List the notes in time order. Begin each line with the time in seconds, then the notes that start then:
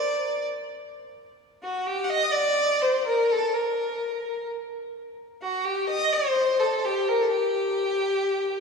Already playing: D5
1.63 F#4
1.87 G4
2.04 F#5
2.10 D#5
2.32 D5
2.82 C5
3.06 A#4
3.31 A4
3.54 A#4
5.42 F#4
5.65 G4
5.89 D#5
6.12 C5
6.60 A4
6.85 G4
7.08 A#4
7.17 A4 A#4
7.31 G4